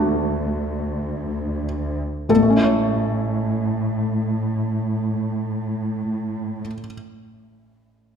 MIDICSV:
0, 0, Header, 1, 3, 480
1, 0, Start_track
1, 0, Key_signature, 3, "major"
1, 0, Tempo, 500000
1, 7834, End_track
2, 0, Start_track
2, 0, Title_t, "Felt piano"
2, 0, Program_c, 0, 0
2, 0, Control_c, 0, 64, 127
2, 0, Note_on_c, 0, 38, 38
2, 0, Note_on_c, 0, 57, 21
2, 0, Note_on_c, 0, 62, 24
2, 0, Note_on_c, 0, 66, 25
2, 0, Note_on_c, 0, 69, 55
2, 1566, Note_off_c, 0, 69, 0
2, 2163, Note_off_c, 0, 57, 0
2, 2164, Note_off_c, 0, 62, 0
2, 2165, Note_off_c, 0, 38, 0
2, 2165, Note_off_c, 0, 66, 0
2, 2199, Note_on_c, 0, 33, 26
2, 2209, Note_on_c, 0, 69, 41
2, 2222, Control_c, 0, 64, 0
2, 2264, Note_on_c, 0, 45, 27
2, 2329, Note_on_c, 0, 57, 25
2, 2400, Note_on_c, 0, 61, 24
2, 2446, Control_c, 0, 64, 127
2, 2464, Note_on_c, 0, 64, 25
2, 2533, Note_on_c, 0, 73, 26
2, 6325, Note_off_c, 0, 33, 0
2, 6335, Note_off_c, 0, 69, 0
2, 6390, Note_off_c, 0, 45, 0
2, 6455, Note_off_c, 0, 57, 0
2, 6526, Note_off_c, 0, 61, 0
2, 6590, Note_off_c, 0, 64, 0
2, 6659, Note_off_c, 0, 73, 0
2, 7834, End_track
3, 0, Start_track
3, 0, Title_t, "Cello section"
3, 0, Program_c, 1, 48
3, 0, Note_on_c, 1, 38, 43
3, 1906, Note_off_c, 1, 38, 0
3, 2208, Note_on_c, 1, 45, 36
3, 6334, Note_off_c, 1, 45, 0
3, 7834, End_track
0, 0, End_of_file